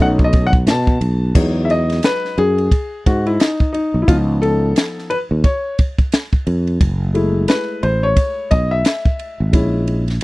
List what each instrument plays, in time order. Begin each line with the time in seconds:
0.00 fretless electric bass B1, upright piano A3 C#4 D#4 F#5
0.19 kick
0.24 upright piano D#5
0.33 kick, ride
0.47 upright piano F#5
0.53 kick
0.67 fretless electric bass B2, upright piano A5, snare, hi-hat pedal, ride
0.87 kick
1.01 fretless electric bass B1, ride
1.35 fretless electric bass E2, upright piano F#3 G#3 D#4, kick, crash
1.65 upright piano E5
1.70 upright piano D#5, ride
1.90 snare, ride
2.03 upright piano B4, snare, hi-hat pedal, ride
2.25 snare
2.38 fretless electric bass F#2, upright piano G#4, ride
2.58 ride
2.71 kick, ride
3.06 fretless electric bass G#2, upright piano F#4, kick, ride
3.26 upright piano E4, ride
3.40 upright piano D#4, snare, hi-hat pedal, ride
3.60 kick
3.73 upright piano D#4, ride
3.94 fretless electric bass B1
4.02 upright piano E4
4.07 fretless electric bass C#2, upright piano F3 B3 D#4 F4, kick, ride
4.42 upright piano A4, ride
4.76 snare, hi-hat pedal, ride
4.98 snare
5.10 upright piano B4, ride
5.31 fretless electric bass D#2
5.44 upright piano C#5, kick, ride
5.79 kick, ride
5.99 kick, ride
6.12 snare, hi-hat pedal, ride
6.33 kick
6.47 fretless electric bass F2, ride
6.67 ride
6.81 fretless electric bass F#1, kick, ride
7.14 upright piano G#3 A3 E4, ride
7.48 upright piano B4, snare, hi-hat pedal, ride
7.83 fretless electric bass A1, upright piano C5, ride
8.03 upright piano C#5
8.16 kick, ride
8.51 fretless electric bass B1, upright piano D#5, kick, ride
8.71 upright piano E5
8.85 snare, hi-hat pedal, ride
9.05 kick
9.19 ride
9.40 fretless electric bass G#1
9.53 fretless electric bass A#1, upright piano G#3 C#4 E4, kick, ride
9.88 ride
10.08 snare, ride